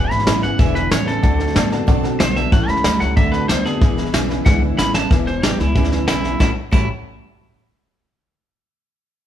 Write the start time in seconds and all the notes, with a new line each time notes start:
Already playing: E2 B2 E3 G#3 D4 F#5
0.10 G#1 D4 E4 B4 E5 G#5 B5, snare
0.19 snare
0.26 A1 E2 C#3 G#3 D4 E4 B4 E5 G#5, snare, hi-hat pedal
0.42 G#1 E2 C#3 D4 E4 B4 E5 F#5 G#5, snare
0.58 E1 E2 D3 E3 G#3 D4 E4 B4 E5 G#5, kick, snare
0.74 D4 E4 B4 E5 G#5, snare
0.90 A1 E2 C#3 G#3 D4 E4 B4 C#5 E5 G#5, snare, hi-hat pedal
1.06 E2 C#3 D4 E4 A4 B4 E5 G#5, snare
1.22 D2 D3 A3 C4 F#4 A4 D5 F#5 A5, kick, snare
1.39 C4 F#4 A4 D5 F#5 A5, snare
1.48 snare
1.54 A2 D3 A3 B3 C4 F#4 A4 D5 F#5 A5, snare, hi-hat pedal
1.71 D3 B3 C4 F#4 A4 D5 F#5 A5, snare
1.87 B2 D3 A3 C4 F#4 A4 D5 F#5 A5, kick, snare
2.03 C4 F#4 A4 D5 F#5 A5, snare
2.19 B1 D3 A3 B3 C4 F#4 C5 D5 F#5 A5, snare, hi-hat pedal
2.35 D3 B3 C4 F#4 A4 D5 E5 F#5 A5, snare
2.52 A1 A2 E3 G3 C#4 G4 A4 C#5 E5 F#5 A5, kick, snare
2.68 C#2 G3 C#4 G4 A4 C#5 E5 A5 B5, snare
2.77 snare
2.84 D2 A2 F#3 G3 C#4 G4 A4 C#5 E5 A5, snare, hi-hat pedal
3.00 C#2 A2 F#3 G3 C#4 G4 A4 C#5 E5 F#5 A5, snare
3.16 D2 D3 A3 C4 F#4 A4 D5 E5 F#5 A5, kick, snare
3.32 C4 F#4 A4 B4 D5 F#5 A5, snare
3.48 D2 D3 A3 B3 C4 F#4 A4 C5 D5 F#5 A5, snare, hi-hat pedal
3.65 D3 B3 C4 F#4 G#4 A4 D5 F#5 A5, snare
3.81 E1 E2 B2 E3 G#3 D4 E4 B4 E5 G#5, kick, snare
3.96 D4 E4 B4 E5 G#5, snare
4.06 snare
4.13 B1 E2 C#3 G#3 D4 E4 B4 E5 G#5, snare, hi-hat pedal
4.29 E2 C#3 D4 E4 B4 E5 G#5, snare
4.45 C#2 E2 D3 E3 G#3 D4 E4 B4 E5 F#5 G#5, kick, snare
4.61 D4 E4 B4 E5 G#5
4.78 A1 E2 C#3 G#3 D4 E4 B4 E5 G#5 B5, snare, hi-hat pedal
4.94 E2 C#3 D4 E4 B4 E5 A5 B5, snare
5.10 E1 E2 B2 E3 G#3 D4 E4 B4 E5 G#5, kick, snare
5.27 D4 E4 B4 C5 G#5, snare
5.43 A1 E2 B2 G#3 D4 E4 G4 B4 E5 G#5, snare, hi-hat pedal
5.59 C#2 E2 B2 D4 E4 B4 E5 G#5, snare
5.75 D2 E2 C#3 E3 G#3 D4 E4 B4 E5 G#5, kick, snare
5.84 snare
5.91 D4 E4 B4 E5 G#5, snare
6.07 B1 E2 C#3 G#3 D4 E4 B4 E5 G#5, snare, hi-hat pedal
6.23 E2 C#3 D4 E4 B4 E5 G#5, snare
6.39 A1 A2 E3 G3 C#4 E4 F#4 A4 C#5 E5 A5, kick, snare
6.71 A1 A2 E3 G3 C#4 E4 F#4 A4 C#5 E5 A5, kick, crash